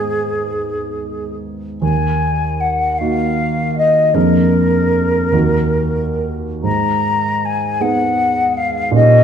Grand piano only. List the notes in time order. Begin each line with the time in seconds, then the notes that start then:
Already playing: G#2 B3 D#4 G#4
1.82 D#2
3.01 A#3 D#4 F#4
4.14 F2 A#3 D4 G#4
5.32 D#2 A#3 D#4 F#4
6.63 G#2
7.80 B3 D#4 G#4
8.91 A#2 C#4 D#4 G4